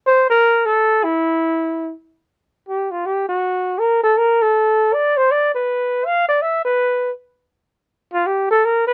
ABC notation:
X:1
M:3/4
L:1/8
Q:"Swing" 1/4=161
K:Aphr
V:1 name="Flugelhorn"
c B2 A2 E- | E4 z2 | z2 G F G _G- | _G2 B A B A- |
A2 d c d =B- | =B2 f d e B- | =B2 z4 | z F G A B =B |]